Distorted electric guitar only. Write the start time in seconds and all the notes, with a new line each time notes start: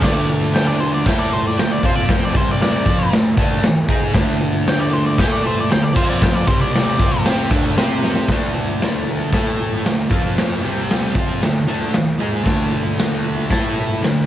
0.01 D3 A3 D4
1.07 A3 E4 A4
1.58 D3 A3
1.84 F3 C4 F4
2.35 C3 G3 C4
2.87 F3 C4 F4
3.12 D3 A3
3.37 D3 A3 D4
3.62 muted distorted electric guitar stroke
3.89 G#3 D#4 G#4
4.13 D3 A3 D4
5.19 A3 E4 A4
5.70 D3 A3
5.94 F3 C4 F4
6.47 C3 G3 C4
6.99 F3 C4 F4
7.26 C4 G4 C5
7.50 D3 A3 D4
7.77 C4 G4 C5
8.31 D3 A3 D4
9.33 A3 E4 A4
9.86 D3 A3
10.09 F3 C4 F4
10.62 C3 G3 C4
11.15 F3 C4 F4
11.42 D3 A3
11.68 D3 A3 D4
11.94 muted distorted electric guitar stroke
12.19 G#3 D#4 G#4
12.43 D3 A3 D4
13.50 A3 E4 A4
14.02 D3 A3